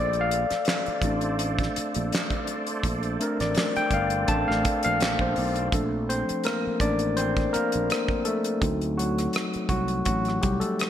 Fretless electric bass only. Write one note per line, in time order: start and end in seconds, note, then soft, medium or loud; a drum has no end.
0.00 0.43 A#1 medium
0.51 muted fretless electric bass stroke soft
0.88 muted fretless electric bass stroke soft
1.03 1.66 A1 medium
1.77 muted fretless electric bass stroke soft
1.96 2.10 A#1 medium
2.85 3.16 A#1 medium
3.40 3.54 A1 medium
3.77 muted fretless electric bass stroke soft
3.92 4.24 G1 medium
4.30 4.46 A1 medium
4.49 4.63 A1 medium
4.86 5.16 A#1 medium
5.20 5.35 A#1 medium
5.38 5.69 B1 medium
5.73 6.22 A#1 medium
6.30 muted fretless electric bass stroke soft
6.67 muted fretless electric bass stroke soft
6.81 7.45 A1 medium
7.56 muted fretless electric bass stroke soft
7.75 7.89 A#1 medium
8.63 9.26 D2 loud
9.55 muted fretless electric bass stroke soft
9.70 10.02 C2 medium
10.07 10.38 A1 medium
10.44 10.60 C2 medium